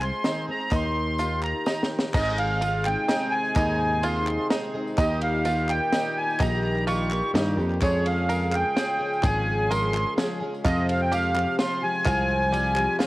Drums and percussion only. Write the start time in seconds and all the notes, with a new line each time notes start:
0.01 clap, tambourine
0.13 tambourine
0.24 snare, closed hi-hat, tambourine
0.60 clap
0.71 kick, clap, closed hi-hat, tambourine
0.84 clap
1.19 closed hi-hat, tambourine
1.43 clap
1.66 snare, clap, tambourine
1.83 snare
1.99 snare
2.03 clap
2.14 kick, clap, crash, tambourine
2.38 ride
2.62 ride, tambourine
2.73 clap
2.85 clap, tambourine
3.09 snare, ride, tambourine
3.45 tambourine
3.56 kick, clap, ride, tambourine
4.03 ride, tambourine
4.15 clap, tambourine
4.27 clap, tambourine
4.50 snare, ride, tambourine
4.87 tambourine
4.98 kick, clap, ride, tambourine
5.21 ride
5.45 ride, tambourine
5.58 clap, tambourine
5.69 clap, tambourine
5.92 snare, ride, tambourine
6.30 tambourine
6.40 kick, clap, ride, tambourine
6.53 tambourine
6.63 clap
6.76 clap
6.87 ride, tambourine
7.11 clap, tambourine
7.35 snare, ride, tambourine
7.47 clap
7.59 tambourine
7.70 clap
7.82 kick, clap, ride, tambourine
8.06 ride
8.30 ride, tambourine
8.41 clap, tambourine
8.52 clap, tambourine
8.77 snare, ride, tambourine
9.13 tambourine
9.23 kick, clap, ride, tambourine
9.71 ride, tambourine
9.83 clap, tambourine
9.94 clap, tambourine
10.18 snare, ride, tambourine
10.54 tambourine
10.65 kick, clap, ride, tambourine
10.89 ride
11.12 ride, tambourine
11.24 clap, tambourine
11.35 clap, tambourine
11.59 snare, ride, tambourine
11.95 tambourine
12.05 kick, clap, ride, tambourine
12.42 tambourine
12.53 clap, ride, tambourine
12.64 clap, tambourine
12.76 clap, tambourine
13.00 snare, clap, ride, tambourine